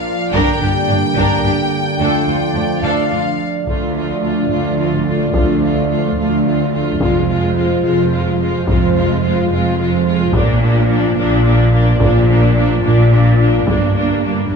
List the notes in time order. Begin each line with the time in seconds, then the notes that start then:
Already playing: F3 A#3 D4 F4 D5 F5
0.32 G1 G2 D3 G3 A#3 D4 G4 A#4 G5, taiko
0.61 G1 G2 D4 G4
0.89 G1 G2 D4
1.16 G1 G2 D4 A#4, taiko
1.43 G1 G2 D4 G4
1.99 D2 F3 A3 D4 F4 A4 D5
2.27 D2 D4 F4
2.54 D2 D4
2.82 D2 D4 A4 F5
3.10 D2 D4 F4
3.65 D2 F3 A3 D4 F4 D5, taiko
3.95 A3 F4
4.22 A3 F4
4.49 D2 A3 F4
4.78 A3 F4
4.93 taiko
5.07 A3 F4
5.33 D2 A3 F4, taiko
5.62 A3 F4
5.89 A3 F4
6.17 D2 A3 F4
6.45 A3 F4
6.72 A3 F4
6.99 F1 F2 F3 G#3 F4 C5, taiko
7.28 G#3 F4
7.56 G#3 F4
7.83 F1 F2 G#3 F4
8.11 G#3 F4
8.39 G#3 F4
8.66 F1 F2 G#3 F4, taiko
8.95 G#3 F4
9.23 G#3 F4
9.50 F1 F2 G#3 F4
9.79 G#3 F4
10.06 G#3 F4
10.33 A#1 A#2 F3 A#3 D4 F4 D5, taiko
10.62 A#3 D4
10.89 A#3 D4
11.17 A#1 A#2 A#3 D4
11.44 A#3 D4
11.72 A#3 D4
12.00 A#1 A#2 A#3 D4, taiko
12.28 A#3 D4
12.56 A#3 D4
12.83 A#1 A#2 A#3 D4
13.10 A#3 D4
13.38 A#3 D4
13.66 G1 G2 G3 A#3 D4, taiko
13.95 A#3 D4
14.23 A#3 D4
14.50 G1 G2 A#3 D4